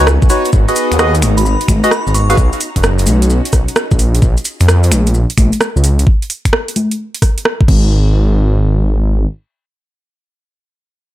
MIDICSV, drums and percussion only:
0, 0, Header, 1, 2, 480
1, 0, Start_track
1, 0, Tempo, 461538
1, 551, Time_signature, 4, 2, 24, 8
1, 11590, End_track
2, 0, Start_track
2, 0, Title_t, "Drums"
2, 72, Note_on_c, 9, 37, 125
2, 79, Note_on_c, 9, 70, 54
2, 176, Note_off_c, 9, 37, 0
2, 183, Note_off_c, 9, 70, 0
2, 230, Note_on_c, 9, 70, 39
2, 232, Note_on_c, 9, 36, 110
2, 307, Note_off_c, 9, 70, 0
2, 307, Note_on_c, 9, 70, 93
2, 312, Note_on_c, 9, 46, 98
2, 336, Note_off_c, 9, 36, 0
2, 411, Note_off_c, 9, 70, 0
2, 416, Note_off_c, 9, 46, 0
2, 467, Note_on_c, 9, 70, 43
2, 473, Note_on_c, 9, 42, 65
2, 547, Note_off_c, 9, 70, 0
2, 547, Note_on_c, 9, 70, 60
2, 551, Note_on_c, 9, 36, 123
2, 577, Note_off_c, 9, 42, 0
2, 651, Note_off_c, 9, 70, 0
2, 655, Note_off_c, 9, 36, 0
2, 709, Note_on_c, 9, 70, 42
2, 713, Note_on_c, 9, 42, 41
2, 787, Note_off_c, 9, 70, 0
2, 787, Note_on_c, 9, 70, 88
2, 791, Note_on_c, 9, 46, 103
2, 817, Note_off_c, 9, 42, 0
2, 891, Note_off_c, 9, 70, 0
2, 895, Note_off_c, 9, 46, 0
2, 953, Note_on_c, 9, 26, 30
2, 953, Note_on_c, 9, 42, 67
2, 960, Note_on_c, 9, 70, 42
2, 1030, Note_off_c, 9, 70, 0
2, 1030, Note_on_c, 9, 70, 55
2, 1031, Note_on_c, 9, 37, 127
2, 1057, Note_off_c, 9, 26, 0
2, 1057, Note_off_c, 9, 42, 0
2, 1134, Note_off_c, 9, 70, 0
2, 1135, Note_off_c, 9, 37, 0
2, 1193, Note_on_c, 9, 42, 57
2, 1194, Note_on_c, 9, 70, 37
2, 1271, Note_off_c, 9, 70, 0
2, 1271, Note_on_c, 9, 70, 94
2, 1272, Note_on_c, 9, 26, 52
2, 1272, Note_on_c, 9, 46, 103
2, 1272, Note_on_c, 9, 63, 68
2, 1297, Note_off_c, 9, 42, 0
2, 1375, Note_off_c, 9, 70, 0
2, 1376, Note_off_c, 9, 26, 0
2, 1376, Note_off_c, 9, 46, 0
2, 1376, Note_off_c, 9, 63, 0
2, 1430, Note_on_c, 9, 70, 38
2, 1434, Note_on_c, 9, 42, 69
2, 1515, Note_off_c, 9, 70, 0
2, 1515, Note_on_c, 9, 70, 59
2, 1538, Note_off_c, 9, 42, 0
2, 1619, Note_off_c, 9, 70, 0
2, 1673, Note_on_c, 9, 42, 59
2, 1750, Note_on_c, 9, 36, 103
2, 1752, Note_on_c, 9, 26, 48
2, 1752, Note_on_c, 9, 46, 101
2, 1752, Note_on_c, 9, 63, 87
2, 1753, Note_on_c, 9, 70, 94
2, 1777, Note_off_c, 9, 42, 0
2, 1854, Note_off_c, 9, 36, 0
2, 1856, Note_off_c, 9, 26, 0
2, 1856, Note_off_c, 9, 46, 0
2, 1856, Note_off_c, 9, 63, 0
2, 1857, Note_off_c, 9, 70, 0
2, 1911, Note_on_c, 9, 70, 40
2, 1912, Note_on_c, 9, 42, 65
2, 1990, Note_on_c, 9, 37, 118
2, 1997, Note_off_c, 9, 70, 0
2, 1997, Note_on_c, 9, 70, 56
2, 2016, Note_off_c, 9, 42, 0
2, 2094, Note_off_c, 9, 37, 0
2, 2101, Note_off_c, 9, 70, 0
2, 2153, Note_on_c, 9, 70, 36
2, 2230, Note_on_c, 9, 46, 98
2, 2234, Note_off_c, 9, 70, 0
2, 2234, Note_on_c, 9, 70, 84
2, 2334, Note_off_c, 9, 46, 0
2, 2338, Note_off_c, 9, 70, 0
2, 2391, Note_on_c, 9, 42, 65
2, 2394, Note_on_c, 9, 70, 44
2, 2470, Note_on_c, 9, 36, 114
2, 2471, Note_off_c, 9, 70, 0
2, 2471, Note_on_c, 9, 70, 57
2, 2495, Note_off_c, 9, 42, 0
2, 2574, Note_off_c, 9, 36, 0
2, 2575, Note_off_c, 9, 70, 0
2, 2626, Note_on_c, 9, 70, 40
2, 2632, Note_on_c, 9, 42, 41
2, 2709, Note_off_c, 9, 70, 0
2, 2709, Note_on_c, 9, 70, 81
2, 2710, Note_on_c, 9, 46, 108
2, 2736, Note_off_c, 9, 42, 0
2, 2813, Note_off_c, 9, 70, 0
2, 2814, Note_off_c, 9, 46, 0
2, 2871, Note_on_c, 9, 36, 59
2, 2871, Note_on_c, 9, 42, 68
2, 2877, Note_on_c, 9, 70, 36
2, 2947, Note_off_c, 9, 70, 0
2, 2947, Note_on_c, 9, 70, 53
2, 2950, Note_on_c, 9, 37, 115
2, 2975, Note_off_c, 9, 36, 0
2, 2975, Note_off_c, 9, 42, 0
2, 3051, Note_off_c, 9, 70, 0
2, 3054, Note_off_c, 9, 37, 0
2, 3102, Note_on_c, 9, 70, 34
2, 3111, Note_on_c, 9, 42, 59
2, 3186, Note_off_c, 9, 70, 0
2, 3186, Note_on_c, 9, 70, 95
2, 3190, Note_on_c, 9, 46, 108
2, 3190, Note_on_c, 9, 63, 69
2, 3215, Note_off_c, 9, 42, 0
2, 3290, Note_off_c, 9, 70, 0
2, 3294, Note_off_c, 9, 46, 0
2, 3294, Note_off_c, 9, 63, 0
2, 3350, Note_on_c, 9, 42, 73
2, 3356, Note_on_c, 9, 70, 42
2, 3431, Note_off_c, 9, 70, 0
2, 3431, Note_on_c, 9, 70, 50
2, 3454, Note_off_c, 9, 42, 0
2, 3535, Note_off_c, 9, 70, 0
2, 3592, Note_on_c, 9, 42, 56
2, 3593, Note_on_c, 9, 70, 37
2, 3665, Note_off_c, 9, 70, 0
2, 3665, Note_on_c, 9, 70, 80
2, 3671, Note_on_c, 9, 36, 101
2, 3671, Note_on_c, 9, 37, 63
2, 3671, Note_on_c, 9, 46, 99
2, 3696, Note_off_c, 9, 42, 0
2, 3769, Note_off_c, 9, 70, 0
2, 3775, Note_off_c, 9, 36, 0
2, 3775, Note_off_c, 9, 37, 0
2, 3775, Note_off_c, 9, 46, 0
2, 3829, Note_on_c, 9, 70, 41
2, 3832, Note_on_c, 9, 42, 72
2, 3909, Note_off_c, 9, 70, 0
2, 3909, Note_on_c, 9, 70, 46
2, 3910, Note_on_c, 9, 37, 118
2, 3936, Note_off_c, 9, 42, 0
2, 4013, Note_off_c, 9, 70, 0
2, 4014, Note_off_c, 9, 37, 0
2, 4069, Note_on_c, 9, 70, 35
2, 4072, Note_on_c, 9, 36, 105
2, 4151, Note_off_c, 9, 70, 0
2, 4151, Note_on_c, 9, 46, 103
2, 4151, Note_on_c, 9, 70, 79
2, 4176, Note_off_c, 9, 36, 0
2, 4255, Note_off_c, 9, 46, 0
2, 4255, Note_off_c, 9, 70, 0
2, 4312, Note_on_c, 9, 42, 69
2, 4317, Note_on_c, 9, 70, 38
2, 4391, Note_off_c, 9, 70, 0
2, 4391, Note_on_c, 9, 36, 120
2, 4391, Note_on_c, 9, 70, 47
2, 4416, Note_off_c, 9, 42, 0
2, 4495, Note_off_c, 9, 36, 0
2, 4495, Note_off_c, 9, 70, 0
2, 4547, Note_on_c, 9, 70, 34
2, 4552, Note_on_c, 9, 42, 42
2, 4625, Note_off_c, 9, 70, 0
2, 4625, Note_on_c, 9, 70, 82
2, 4631, Note_on_c, 9, 46, 109
2, 4656, Note_off_c, 9, 42, 0
2, 4729, Note_off_c, 9, 70, 0
2, 4735, Note_off_c, 9, 46, 0
2, 4786, Note_on_c, 9, 70, 38
2, 4792, Note_on_c, 9, 26, 31
2, 4792, Note_on_c, 9, 42, 69
2, 4871, Note_on_c, 9, 37, 123
2, 4875, Note_off_c, 9, 70, 0
2, 4875, Note_on_c, 9, 70, 57
2, 4896, Note_off_c, 9, 26, 0
2, 4896, Note_off_c, 9, 42, 0
2, 4975, Note_off_c, 9, 37, 0
2, 4979, Note_off_c, 9, 70, 0
2, 5025, Note_on_c, 9, 70, 36
2, 5032, Note_on_c, 9, 42, 58
2, 5112, Note_on_c, 9, 26, 50
2, 5112, Note_on_c, 9, 46, 114
2, 5112, Note_on_c, 9, 63, 64
2, 5113, Note_off_c, 9, 70, 0
2, 5113, Note_on_c, 9, 70, 93
2, 5136, Note_off_c, 9, 42, 0
2, 5216, Note_off_c, 9, 26, 0
2, 5216, Note_off_c, 9, 46, 0
2, 5216, Note_off_c, 9, 63, 0
2, 5217, Note_off_c, 9, 70, 0
2, 5270, Note_on_c, 9, 70, 40
2, 5272, Note_on_c, 9, 42, 72
2, 5347, Note_off_c, 9, 70, 0
2, 5347, Note_on_c, 9, 70, 48
2, 5376, Note_off_c, 9, 42, 0
2, 5451, Note_off_c, 9, 70, 0
2, 5511, Note_on_c, 9, 42, 60
2, 5591, Note_on_c, 9, 26, 51
2, 5591, Note_on_c, 9, 36, 106
2, 5591, Note_on_c, 9, 46, 110
2, 5591, Note_on_c, 9, 63, 80
2, 5593, Note_on_c, 9, 70, 86
2, 5615, Note_off_c, 9, 42, 0
2, 5695, Note_off_c, 9, 26, 0
2, 5695, Note_off_c, 9, 36, 0
2, 5695, Note_off_c, 9, 46, 0
2, 5695, Note_off_c, 9, 63, 0
2, 5697, Note_off_c, 9, 70, 0
2, 5743, Note_on_c, 9, 70, 39
2, 5751, Note_on_c, 9, 42, 69
2, 5830, Note_on_c, 9, 37, 112
2, 5832, Note_off_c, 9, 70, 0
2, 5832, Note_on_c, 9, 70, 46
2, 5855, Note_off_c, 9, 42, 0
2, 5934, Note_off_c, 9, 37, 0
2, 5936, Note_off_c, 9, 70, 0
2, 5997, Note_on_c, 9, 70, 38
2, 6071, Note_on_c, 9, 46, 109
2, 6076, Note_off_c, 9, 70, 0
2, 6076, Note_on_c, 9, 70, 76
2, 6175, Note_off_c, 9, 46, 0
2, 6180, Note_off_c, 9, 70, 0
2, 6230, Note_on_c, 9, 70, 38
2, 6232, Note_on_c, 9, 42, 71
2, 6310, Note_on_c, 9, 36, 118
2, 6334, Note_off_c, 9, 70, 0
2, 6336, Note_off_c, 9, 42, 0
2, 6414, Note_off_c, 9, 36, 0
2, 6473, Note_on_c, 9, 42, 39
2, 6551, Note_on_c, 9, 46, 112
2, 6577, Note_off_c, 9, 42, 0
2, 6655, Note_off_c, 9, 46, 0
2, 6711, Note_on_c, 9, 36, 59
2, 6712, Note_on_c, 9, 26, 34
2, 6712, Note_on_c, 9, 42, 68
2, 6790, Note_on_c, 9, 37, 122
2, 6815, Note_off_c, 9, 36, 0
2, 6816, Note_off_c, 9, 26, 0
2, 6816, Note_off_c, 9, 42, 0
2, 6894, Note_off_c, 9, 37, 0
2, 6951, Note_on_c, 9, 42, 58
2, 7031, Note_on_c, 9, 46, 114
2, 7031, Note_on_c, 9, 63, 61
2, 7055, Note_off_c, 9, 42, 0
2, 7135, Note_off_c, 9, 46, 0
2, 7135, Note_off_c, 9, 63, 0
2, 7191, Note_on_c, 9, 42, 71
2, 7295, Note_off_c, 9, 42, 0
2, 7431, Note_on_c, 9, 42, 60
2, 7510, Note_on_c, 9, 36, 104
2, 7511, Note_on_c, 9, 37, 61
2, 7511, Note_on_c, 9, 46, 109
2, 7535, Note_off_c, 9, 42, 0
2, 7614, Note_off_c, 9, 36, 0
2, 7615, Note_off_c, 9, 37, 0
2, 7615, Note_off_c, 9, 46, 0
2, 7672, Note_on_c, 9, 42, 67
2, 7751, Note_on_c, 9, 37, 116
2, 7776, Note_off_c, 9, 42, 0
2, 7855, Note_off_c, 9, 37, 0
2, 7910, Note_on_c, 9, 36, 104
2, 7990, Note_off_c, 9, 36, 0
2, 7990, Note_on_c, 9, 36, 119
2, 7991, Note_on_c, 9, 49, 90
2, 8094, Note_off_c, 9, 36, 0
2, 8095, Note_off_c, 9, 49, 0
2, 11590, End_track
0, 0, End_of_file